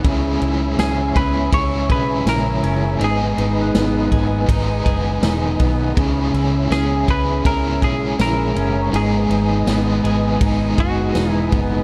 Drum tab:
RD |xxxxxxxx|xxxxxxxx|xxxxxxxx|xxxxxxxx|
TB |--x---x-|--x---x-|--x---x-|--x---x-|
SD |--o---o-|--o---o-|--o---o-|--o---o-|
BD |o--ooo--|---ooo-o|o--ooo--|----oo-o|